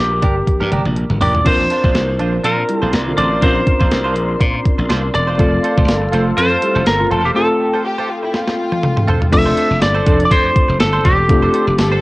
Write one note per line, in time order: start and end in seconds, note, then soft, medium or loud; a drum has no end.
0.00 0.24 A#1 medium
0.00 1.41 A#3 medium
0.00 1.42 D4 medium
0.00 0.68 G4 medium
0.00 1.42 G4 medium
0.00 1.42 A#4 medium
0.12 muted clean electric guitar stroke soft
0.22 0.41 G1 medium
0.22 0.40 D4 medium
0.22 0.36 G4 medium
0.22 0.35 A#4 loud
0.22 kick medium
0.22 closed hi-hat medium
0.36 muted clean electric guitar stroke soft
0.47 muted clean electric guitar stroke soft
0.47 kick medium
0.47 closed hi-hat medium
0.47 high tom medium
0.60 0.69 G2 medium
0.60 0.70 D4 soft
0.60 0.71 G4 medium
0.60 0.72 A#4 medium
0.60 high tom soft
0.71 0.82 G1 medium
0.71 0.89 D4 medium
0.71 0.85 G4 medium
0.71 0.84 A#4 medium
0.71 closed hi-hat medium
0.71 mid tom medium
0.85 1.04 A#1 medium
0.85 muted clean electric guitar stroke soft
0.85 mid tom medium
0.96 muted clean electric guitar stroke soft
0.96 closed hi-hat medium
1.10 1.18 G1 medium
1.10 muted clean electric guitar stroke soft
1.10 mid tom medium
1.21 1.39 A1 medium
1.21 1.38 D4 medium
1.21 1.35 G4 medium
1.21 1.33 A#4 medium
1.21 1.47 D5 medium
1.21 floor tom medium
1.21 open hi-hat medium
1.34 muted clean electric guitar stroke soft
1.34 floor tom medium
1.45 1.64 A#1 medium
1.45 3.38 C4 medium
1.45 1.63 D4 medium
1.45 3.38 D4 medium
1.45 3.39 F4 medium
1.45 1.59 F4 medium
1.45 5.35 A#4 medium
1.45 3.39 A#4 medium
1.45 2.45 C5 loud
1.45 1.58 C5 medium
1.45 5.35 D5 medium
1.45 9.29 C6 medium
1.45 kick loud
1.45 closed hi-hat medium
1.45 crash medium
1.59 1.68 F3 medium
1.59 1.68 D4 medium
1.59 1.68 A#4 medium
1.59 muted clean electric guitar stroke soft
1.70 1.84 D4 medium
1.70 1.83 F4 medium
1.70 1.82 C5 medium
1.70 closed hi-hat medium
1.84 1.92 A#1 medium
1.84 1.93 F3 medium
1.84 1.93 D4 medium
1.84 1.94 D4 soft
1.84 1.94 F4 medium
1.84 1.95 C5 medium
1.84 1.93 C5 medium
1.84 kick medium
1.95 2.19 C2 medium
1.95 2.06 A#3 medium
1.95 2.06 F4 medium
1.95 2.06 D5 medium
1.95 muted clean electric guitar stroke soft
1.95 snare loud
1.95 closed hi-hat medium
2.08 muted clean electric guitar stroke soft
2.19 2.38 A#1 medium
2.19 2.39 F3 medium
2.19 2.36 D4 medium
2.19 2.39 D4 medium
2.19 2.33 F4 medium
2.19 2.39 C5 loud
2.19 2.32 C5 medium
2.19 closed hi-hat medium
2.33 muted clean electric guitar stroke soft
2.44 2.63 A#2 loud
2.44 2.55 F3 medium
2.44 2.61 D4 medium
2.44 2.55 D4 medium
2.44 2.58 F4 loud
2.44 2.55 A#4 medium
2.44 2.79 A#4 medium
2.44 2.56 C5 medium
2.44 closed hi-hat medium
2.57 muted clean electric guitar stroke soft
2.69 2.88 G3 medium
2.69 2.88 E4 loud
2.69 2.88 G4 loud
2.69 muted clean electric guitar stroke soft
2.69 closed hi-hat medium
2.79 2.91 A#1 medium
2.79 2.93 F4 medium
2.79 2.90 A4 medium
2.79 2.93 C5 medium
2.84 2.92 D4 medium
2.93 3.12 C2 medium
2.93 snare loud
2.93 closed hi-hat medium
3.06 3.26 D3 medium
3.06 3.26 C4 medium
3.06 3.27 F4 loud
3.06 muted clean electric guitar stroke soft
3.17 3.36 A1 medium
3.17 3.32 D4 medium
3.17 3.31 F4 medium
3.17 3.30 C5 medium
3.17 3.43 D5 loud
3.17 closed hi-hat medium
3.31 3.41 D4 soft
3.31 3.42 F4 medium
3.31 3.43 C5 medium
3.41 3.61 A#1 loud
3.41 5.34 C4 medium
3.41 3.48 C#4 soft
3.41 3.59 D4 medium
3.41 5.35 F4 medium
3.41 3.56 F4 medium
3.41 5.36 A#4 medium
3.41 4.86 C5 loud
3.41 3.54 C5 loud
3.41 kick loud
3.41 closed hi-hat medium
3.48 5.38 D4 medium
3.56 muted clean electric guitar stroke soft
3.67 muted clean electric guitar stroke soft
3.67 kick loud
3.67 closed hi-hat medium
3.80 3.89 A#1 medium
3.80 3.90 D4 soft
3.80 3.91 F4 medium
3.80 3.91 C5 medium
3.80 kick medium
3.91 4.16 C2 medium
3.91 muted clean electric guitar stroke soft
3.91 snare loud
3.91 closed hi-hat medium
4.04 4.15 D4 medium
4.04 4.15 F4 medium
4.04 4.16 C5 medium
4.16 4.35 A#1 medium
4.16 muted clean electric guitar stroke soft
4.16 closed hi-hat medium
4.29 muted clean electric guitar stroke soft
4.40 4.59 A#2 loud
4.40 muted clean electric guitar stroke soft
4.40 kick medium
4.40 closed hi-hat medium
4.54 muted clean electric guitar stroke soft
4.66 kick loud
4.66 closed hi-hat medium
4.78 4.87 A#1 medium
4.78 muted clean electric guitar stroke medium
4.89 5.08 C2 medium
4.89 5.07 D4 medium
4.89 5.03 F4 medium
4.89 5.02 C5 loud
4.89 snare loud
4.89 closed hi-hat medium
5.03 muted clean electric guitar stroke soft
5.14 5.33 E1 medium
5.14 6.09 D5 loud
5.14 muted clean electric guitar stroke soft
5.14 closed hi-hat medium
5.27 5.38 D4 medium
5.27 5.37 F4 medium
5.27 5.39 C5 medium
5.38 5.57 F1 loud
5.38 7.31 A3 medium
5.38 7.32 C4 medium
5.38 5.56 F4 medium
5.38 7.32 F4 medium
5.38 9.29 A4 medium
5.38 5.52 A4 medium
5.38 7.32 A4 medium
5.38 5.51 C5 loud
5.38 7.34 F5 medium
5.38 kick loud
5.38 closed hi-hat medium
5.52 5.62 F3 medium
5.52 5.62 C4 medium
5.52 5.62 A4 medium
5.52 muted clean electric guitar stroke soft
5.63 5.77 F4 medium
5.63 5.77 A4 medium
5.63 5.76 C5 medium
5.63 closed hi-hat medium
5.77 5.86 F1 loud
5.77 5.86 A3 medium
5.77 5.86 F4 medium
5.77 5.87 F4 soft
5.77 5.88 A4 medium
5.77 5.88 C5 medium
5.77 5.86 C5 medium
5.77 kick loud
5.88 6.07 G1 medium
5.88 5.99 D4 medium
5.88 5.99 A#4 medium
5.88 5.99 D5 medium
5.88 muted clean electric guitar stroke soft
5.88 snare loud
5.88 closed hi-hat medium
5.88 tambourine medium
6.02 muted clean electric guitar stroke soft
6.12 6.31 F1 medium
6.12 6.33 A3 loud
6.12 6.30 F4 medium
6.12 6.33 F4 medium
6.12 6.26 A4 medium
6.12 6.33 C5 loud
6.12 6.25 C5 medium
6.12 closed hi-hat medium
6.26 muted clean electric guitar stroke soft
6.37 6.56 F2 loud
6.37 6.48 F3 medium
6.37 6.48 C4 medium
6.37 6.54 F4 medium
6.37 6.48 A4 loud
6.37 6.51 A4 medium
6.37 6.87 C5 loud
6.37 6.50 C5 medium
6.37 closed hi-hat medium
6.51 muted clean electric guitar stroke soft
6.62 6.82 G3 medium
6.62 6.82 E4 medium
6.62 6.82 G4 loud
6.62 muted clean electric guitar stroke soft
6.62 closed hi-hat medium
6.75 6.84 F1 medium
6.75 6.85 F4 medium
6.75 6.86 A4 medium
6.75 6.87 C5 medium
6.86 7.05 G1 loud
6.86 7.11 A#4 loud
6.86 muted clean electric guitar stroke soft
6.86 snare loud
6.86 closed hi-hat medium
6.86 tambourine medium
7.00 7.20 C3 medium
7.00 7.20 A3 medium
7.00 7.20 F4 loud
7.00 muted clean electric guitar stroke medium
7.11 7.30 E1 medium
7.11 7.25 F4 medium
7.11 7.24 A4 medium
7.11 7.23 C5 loud
7.11 closed hi-hat medium
7.24 7.34 F4 medium
7.24 7.30 G4 medium
7.24 7.35 A4 medium
7.24 7.36 C5 medium
7.35 9.28 A3 medium
7.35 9.29 C4 medium
7.35 7.53 F4 medium
7.35 9.29 F4 medium
7.35 7.82 A4 medium
7.35 7.49 A4 loud
7.35 9.29 A4 medium
7.35 7.48 C5 medium
7.35 9.31 G5 medium
7.49 muted clean electric guitar stroke soft
7.60 muted clean electric guitar stroke soft
7.74 7.84 F4 soft
7.74 7.84 A4 medium
7.74 7.85 C5 medium
7.85 8.08 G4 loud
7.85 muted clean electric guitar stroke soft
7.98 8.08 F4 medium
7.98 8.09 A4 medium
7.98 8.10 C5 medium
8.09 8.23 F4 loud
8.09 muted clean electric guitar stroke soft
8.23 8.33 E4 loud
8.23 muted clean electric guitar stroke medium
8.34 9.33 F4 loud
8.34 muted clean electric guitar stroke soft
8.34 snare medium
8.48 muted clean electric guitar stroke medium
8.48 snare medium
8.72 muted clean electric guitar stroke soft
8.72 high tom medium
8.83 muted clean electric guitar stroke soft
8.83 mid tom medium
8.97 muted clean electric guitar stroke soft
8.97 mid tom medium
9.08 9.25 F4 medium
9.08 9.21 A4 medium
9.08 9.20 C5 medium
9.08 floor tom loud
9.21 muted clean electric guitar stroke medium
9.21 floor tom medium
9.31 9.51 F1 loud
9.31 9.44 F3 medium
9.31 11.25 A3 medium
9.31 11.25 C4 medium
9.31 11.25 D4 medium
9.31 9.44 D4 medium
9.31 11.26 F4 medium
9.31 9.44 A4 medium
9.31 11.26 A4 medium
9.31 9.82 E5 loud
9.31 muted clean electric guitar stroke soft
9.31 kick loud
9.31 closed hi-hat medium
9.31 crash loud
9.46 9.55 D4 medium
9.46 9.57 A4 medium
9.46 9.57 C5 medium
9.57 9.71 D4 medium
9.57 9.70 A4 medium
9.57 9.69 C5 medium
9.57 closed hi-hat medium
9.70 9.79 F1 loud
9.70 muted clean electric guitar stroke soft
9.81 10.00 G1 loud
9.81 10.24 D5 loud
9.81 muted clean electric guitar stroke soft
9.81 snare loud
9.81 closed hi-hat medium
9.81 tambourine medium
9.94 10.04 D4 medium
9.94 10.05 A4 medium
9.94 10.06 C5 medium
10.06 10.25 F1 medium
10.06 10.27 F3 medium
10.06 10.20 D4 medium
10.06 10.27 D4 loud
10.06 10.27 A4 loud
10.06 10.20 A4 medium
10.06 10.18 C5 medium
10.06 kick loud
10.06 closed hi-hat medium
10.20 muted clean electric guitar stroke soft
10.20 closed hi-hat medium
10.25 10.31 D5 medium
10.31 10.49 F2 loud
10.31 10.80 C5 loud
10.31 muted clean electric guitar stroke soft
10.31 kick medium
10.31 closed hi-hat loud
10.44 muted clean electric guitar stroke soft
10.56 kick loud
10.56 closed hi-hat medium
10.68 10.77 F1 medium
10.68 muted clean electric guitar stroke medium
10.80 10.99 G1 loud
10.80 11.06 A4 medium
10.80 muted clean electric guitar stroke soft
10.80 snare loud
10.80 closed hi-hat medium
10.80 tambourine medium
10.93 11.03 D4 medium
10.93 11.04 A4 medium
10.93 11.05 C5 medium
11.04 11.23 E1 medium
11.04 11.18 D4 medium
11.04 11.99 G4 medium
11.04 11.18 A4 medium
11.04 11.17 C5 medium
11.04 kick loud
11.04 closed hi-hat medium
11.18 muted clean electric guitar stroke soft
11.28 11.48 F1 loud
11.28 11.41 F3 medium
11.28 12.01 A3 medium
11.28 12.01 C4 medium
11.28 11.41 D4 medium
11.28 12.01 D4 medium
11.28 12.01 F4 medium
11.28 11.41 A4 loud
11.28 12.01 A4 medium
11.28 muted clean electric guitar stroke soft
11.28 kick loud
11.28 closed hi-hat medium
11.42 11.52 D4 medium
11.42 11.53 A4 medium
11.42 11.54 C5 medium
11.53 11.67 D4 medium
11.53 11.67 A4 medium
11.53 11.66 C5 medium
11.53 closed hi-hat medium
11.67 11.76 F1 loud
11.67 muted clean electric guitar stroke medium
11.78 11.97 G1 loud
11.78 12.01 A4 loud
11.78 muted clean electric guitar stroke soft
11.78 snare loud
11.78 closed hi-hat medium
11.78 tambourine medium
11.91 12.01 D4 medium
11.91 12.01 A4 medium
11.91 12.01 C5 medium